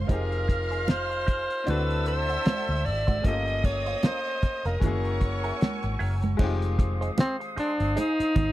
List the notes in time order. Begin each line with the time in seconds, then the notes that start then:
Already playing: C4 D4 E4 G4 A#4
0.07 F1 C4 D#4 F4 G#4 C5 D#5 F5 C6 F6, kick, closed hi-hat, muted conga
0.12 G4 G#4 A#4
0.31 muted clean electric guitar stroke, closed hi-hat
0.47 muted clean electric guitar stroke, kick, closed hi-hat
0.71 D#4 G#4 C5, closed hi-hat
0.88 C5, snare, closed hi-hat, high conga
1.10 muted clean electric guitar stroke, closed hi-hat
1.27 D#4 G#4 C5, kick, closed hi-hat
1.50 muted clean electric guitar stroke, closed hi-hat
1.64 C4 D4 E4 F#4 C5 D5 E5 F#5 A5 E6, closed hi-hat
1.68 D2 F#4 A4 B4, muted conga
1.90 closed hi-hat
2.06 C5, muted clean electric guitar stroke, closed hi-hat
2.29 D4 F#4 C5, closed hi-hat
2.45 D4 F#4 C5, snare, closed hi-hat, high conga
2.67 D2, closed hi-hat
2.85 G#1 D5, muted clean electric guitar stroke, open hi-hat
3.07 D4 F#4 C5, kick, closed hi-hat, high conga
3.22 G1 A3 C#4 F4 A#4 D#5 F5 G5 D#6, kick, closed hi-hat, muted conga
3.26 A#3 G4 A4 D#5
3.47 closed hi-hat
3.64 C#5, muted clean electric guitar stroke, kick, closed hi-hat, muted conga
3.86 C#4 F4 C5, closed hi-hat
4.03 C#4 F4 A#4 C5, snare, closed hi-hat, high conga
4.26 closed hi-hat
4.43 muted clean electric guitar stroke, muted fingered electric bass stroke, kick, snare, closed hi-hat
4.65 F1 C#4 F4 A#4, snare, closed hi-hat
4.80 F#1 G#3 C#4 E4 C#5 F#5 G#5 C#6 E6, muted clean electric guitar stroke, kick, closed hi-hat, muted conga, low conga
4.84 A#3 F#4 G#4
5.05 muted clean electric guitar stroke, closed hi-hat
5.21 kick, closed hi-hat
5.44 E4 G#4 A#4, closed hi-hat
5.61 snare, closed hi-hat, high conga
5.83 G#1, muted clean electric guitar stroke, closed hi-hat
5.99 F#1 E4 G#4 A#4, open hi-hat
6.22 muted clean electric guitar stroke, closed hi-hat, high conga
6.37 F1 D#3 G#3 C4 D#4 G#4 C5 F5 D#6, kick, crash, muted conga
6.42 F4 G4
6.62 muted clean electric guitar stroke, closed hi-hat
6.78 muted clean electric guitar stroke, kick, closed hi-hat
7.01 D#4 G#4 C5, closed hi-hat
7.18 C4, snare, closed hi-hat, high conga
7.40 muted clean electric guitar stroke, closed hi-hat
7.56 D4 D#4 G#4 C5, muted fingered electric bass stroke, closed hi-hat
7.80 G1, muted clean electric guitar stroke, closed hi-hat
7.96 D#4 G#4 C5, closed hi-hat, muted conga
8.20 muted fingered electric bass stroke, closed hi-hat
8.36 G#1, muted clean electric guitar stroke, kick, closed hi-hat, low conga